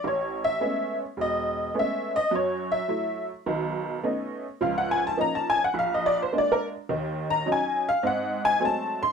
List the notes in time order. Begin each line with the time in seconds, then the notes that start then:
0.04 A1 C#5
0.44 E5
0.60 G#3 A3 B3 C#4
1.17 E1
1.21 D#5
1.74 G#3 A3 B3 C#4
1.79 E5
2.16 D#5
2.31 F#2 F#3
2.35 C#5
2.72 E5
2.88 F#3 A3 E4
3.46 B1 D#3
4.03 A3 B3 C#4 D#4
4.61 C#2 F3 F5
4.78 F#5
4.91 G#5
5.07 A5
5.17 F3 A#3 C#4 D#4 A#5
5.35 A5
5.50 G#5
5.64 F#5
5.74 A#1
5.79 F5
5.94 D#5
6.06 D5
6.22 C5
6.32 G#3 A#3 D4
6.38 D5
6.52 A#4
6.89 D#2 D#3
7.30 A#5
7.46 F#3 C#4 D#4
7.52 G#5
7.89 F5
8.03 G#2 C4 F#5
8.45 G#5
8.60 F#3 G#3 A3 C4
8.65 A5
9.03 C6